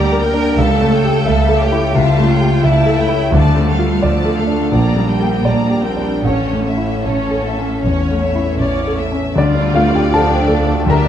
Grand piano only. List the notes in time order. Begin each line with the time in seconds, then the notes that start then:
Already playing: D3 A#3 D4 G4 A#4 D5
0.12 A#4
0.34 D4
0.58 C#2
0.81 A3
1.04 G4
1.26 E5
1.49 A4
1.72 E4
1.95 C#2
2.18 A3
2.41 G4
2.64 E5
2.86 A4
3.08 E4
3.32 D2
3.56 A3
3.79 F4
4.03 D5
4.25 A4
4.47 D4
4.72 A#1
4.96 G3
5.21 G4
5.45 D5
5.70 G4
5.97 D4
6.25 A1
6.52 A3
6.77 E4
7.05 C#5
7.31 A4
7.59 C#4
7.85 E2
8.11 A3
8.35 E4
8.62 C#5
8.87 A4
9.12 C#4
9.36 D2 D4 D5
9.55 D4
9.74 A3 F4 F5
9.91 D4
9.96 G4 G5
10.10 F4 A5
10.15 A4
10.30 D4
10.48 A4
10.67 D4
10.86 D2 A#4 A#5